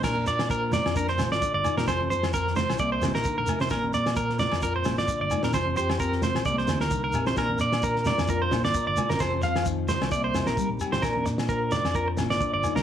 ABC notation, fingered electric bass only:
X:1
M:4/4
L:1/16
Q:"Swing 16ths" 1/4=131
K:Bb
V:1 name="Fingered electric bass" clef=bass
B,,,2 B,,4- B,, F,,3 B,,, G,,, z G,,, z B,, | F,,,2 F,,4- F,, _C,, =C,,2 C,, B,,, z B,,, z C, | B,,,2 B,,4- B,, F,,3 B,,, G,,, z G,,, z B,, | F,,,2 F,,4- F,, B,,, C,,2 D,,2 C,,2 B,,,2 |
B,,,2 B,,4- B,, F,,3 B,,, G,,, z G,,, z G,,, | F,,,2 F,,4- F,, C,, C,,2 C,, B,,, z B,,, z A,,, | B,,,2 B,,4- B,, F,,3 B,,, G,,, z G,,, z C,, |]